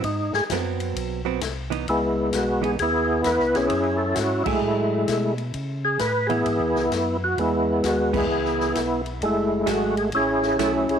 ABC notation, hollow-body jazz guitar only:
X:1
M:4/4
L:1/8
Q:"Swing" 1/4=131
K:C#m
V:1 name="Hollow-body jazz guitar"
z2 [F,B,^B,]3 [F,=B,^B,] z [E,=B,D] | z3 [E,B,D] z4 | z3 [F,EG]3 z2 | z3 [E,B,]3 z2 |
z3 [E,B,]3 z2 | z2 [F,A,EG] z3 [F,A,EG] z |]